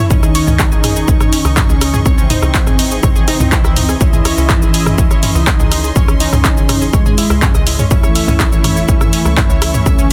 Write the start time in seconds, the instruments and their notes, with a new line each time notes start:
Already playing: digital synth lead E3, analog synth lead E4
0.10 analog synth bass C#2, digital synth lead D#3, analog synth pad D#3 C#4 D#4, synth pluck C#4 C#5, analog synth lead D#4, string section D#5 C#6, kick, mid tom, shaker
0.23 synth pluck G#4 G#5, cross-stick, shaker
0.35 synth pluck C#5 C#6, open hi-hat, shaker
0.47 analog synth bass C#2, synth pluck C#4 C#5, mid tom, shaker
0.59 synth pluck D#4 D#5, kick, cross-stick, clap, shaker
0.72 analog synth bass G#1, synth pluck G#4 G#5, shaker
0.84 synth pluck G#4 G#5, cross-stick, mid tom, open hi-hat, shaker
0.96 synth pluck G#4 G#5, shaker
1.08 analog synth bass C#2, synth pluck C#4 C#5, kick, shaker
1.20 synth pluck C#5 C#6, cross-stick, mid tom, shaker
1.32 synth pluck C#4 C#5, open hi-hat, shaker
1.45 analog synth bass C#2, synth pluck D#4 D#5, cross-stick, shaker
1.57 digital synth lead C#3, analog synth pad E3 C#4 D#4, analog synth lead C#4, synth pluck D#4 D#5, kick, clap, mid tom, shaker
1.69 analog synth bass C#2, synth pluck G#4 G#5, shaker
1.81 analog synth pad E3 C#4 D#4, synth pluck D#4 D#5, cross-stick, open hi-hat, shaker
1.94 synth pluck G#4 G#5, mid tom, shaker
2.06 analog synth bass C#2, digital synth lead C3, analog synth pad E3 D#4 E4, analog synth lead C4, synth pluck C#5 C#6, kick, cross-stick, shaker
2.18 synth pluck C#4 C#5, shaker
2.30 synth pluck D#4 D#5, mid tom, open hi-hat, shaker
2.42 analog synth bass C#2, synth pluck D#4 D#5, cross-stick, shaker
2.54 synth pluck D#5, kick, clap, shaker
2.67 analog synth bass G#1, synth pluck G#4 G#5, cross-stick, mid tom, shaker
2.79 synth pluck D#4 D#5, open hi-hat, shaker
2.91 synth pluck G#4 G#5, shaker
3.03 analog synth bass C#2, digital synth lead C3, analog synth lead C4, synth pluck C#5 C#6, kick, cross-stick, mid tom, shaker
3.16 synth pluck G#4 G#5, shaker
3.28 analog synth pad E3 D#4 E4, synth pluck D#4 D#5, cross-stick, open hi-hat, shaker
3.40 analog synth bass C#2, synth pluck D#4 D#5, mid tom, shaker
3.52 synth pluck E4 E5, kick, clap, shaker
3.64 analog synth bass C#2, synth pluck E4 E5, cross-stick, shaker
3.76 synth pluck D#4 D#5, mid tom, open hi-hat, shaker
3.89 synth pluck G#4 G#5, cross-stick, shaker
4.01 analog synth bass C#2, digital synth lead E3, analog synth pad E3 C#4 D#5, synth pluck C#4 C#5, analog synth lead E4, string section C6, kick, shaker
4.13 synth pluck G#4 G#5, mid tom, shaker
4.25 synth pluck C#5 C#6, cross-stick, open hi-hat, shaker
4.38 analog synth bass C#2, synth pluck C#4 C#5, shaker
4.50 synth pluck D#4 D#5, kick, cross-stick, clap, mid tom, shaker
4.62 analog synth bass G#1, synth pluck G#4 G#5, shaker
4.74 synth pluck G#4 G#5, open hi-hat, shaker
4.86 synth pluck G#4 G#5, cross-stick, mid tom, shaker
4.98 analog synth bass C#2, synth pluck C#4 C#5, kick, shaker
5.11 synth pluck C#5 C#6, cross-stick, shaker
5.23 synth pluck C#4 C#5, mid tom, open hi-hat, shaker
5.35 analog synth bass C#2, synth pluck D#4 D#5, shaker
5.47 digital synth lead D#3, analog synth pad E3 C#4 D#4, analog synth lead D#4, synth pluck D#5, kick, cross-stick, clap, shaker
5.59 analog synth bass C#2, synth pluck G#4 G#5, mid tom, shaker
5.71 analog synth pad E3 C#4 D#4, synth pluck D#4 D#5, cross-stick, open hi-hat, shaker
5.84 synth pluck G#4 G#5, shaker
5.96 analog synth bass C#2, digital synth lead C#3, analog synth pad E3 C#4 D#4, analog synth lead C#4, synth pluck C#5 C#6, kick, mid tom, shaker
6.08 synth pluck C#4 C#5, cross-stick, shaker
6.20 synth pluck D#4 D#5, open hi-hat, shaker
6.33 analog synth bass C#2, synth pluck D#4 D#5, cross-stick, mid tom, shaker
6.45 synth pluck D#4 D#5, kick, clap, shaker
6.57 analog synth bass G#1, synth pluck G#4 G#5, shaker
6.69 synth pluck D#4 D#5, cross-stick, mid tom, open hi-hat, shaker
6.82 synth pluck G#4 G#5, shaker
6.93 analog synth bass C#2, digital synth lead G#2, analog synth lead G#3, synth pluck C#5 C#6, kick, cross-stick, shaker
7.06 synth pluck G#4 G#5, mid tom, shaker
7.18 synth pluck E4 E5, open hi-hat, shaker
7.30 analog synth bass C#2, synth pluck E4 E5, cross-stick, shaker
7.42 synth pluck C#4 C#5, kick, clap, mid tom, shaker
7.55 analog synth bass C#2, synth pluck D#5 D#6, cross-stick, shaker
7.67 synth pluck E4 E5, open hi-hat, shaker
7.79 synth pluck C#4 C#5, mid tom, shaker
7.91 analog synth bass C#2, digital synth lead E3, analog synth pad E3 A3 C#4, synth pluck C#4 C#5, analog synth lead E4, string section A4 E5 C#6, kick, mid tom, shaker
8.03 synth pluck C#5 C#6, cross-stick, shaker
8.15 synth pluck E5 E6, open hi-hat, shaker
8.28 analog synth bass C#2, synth pluck C#4 C#5, mid tom, shaker
8.40 synth pluck E4 E5, kick, cross-stick, clap, shaker
8.52 analog synth bass G#1, synth pluck C#5 C#6, shaker
8.64 synth pluck C#5 C#6, cross-stick, mid tom, open hi-hat, shaker
8.77 synth pluck C#5 C#6, shaker
8.89 analog synth bass C#2, synth pluck C#4 C#5, kick, shaker
9.01 synth pluck E5 E6, cross-stick, mid tom, shaker
9.13 synth pluck C#4 C#5, open hi-hat, shaker
9.25 analog synth bass C#2, synth pluck E4 E5, cross-stick, shaker
9.37 digital synth lead E3, analog synth pad E3 A3 C#4, analog synth lead E4, synth pluck E4 E5, kick, clap, mid tom, shaker
9.50 analog synth bass C#2, synth pluck C#5 C#6, shaker
9.62 analog synth pad E3 A3 C#4, synth pluck E4 E5, cross-stick, open hi-hat, shaker
9.74 synth pluck C#5 C#6, mid tom, shaker
9.86 analog synth bass C#2, digital synth lead C#3, analog synth pad E3 A3 C#4, analog synth lead C#4, synth pluck E5 E6, kick, cross-stick, shaker
9.99 synth pluck C#4 C#5, shaker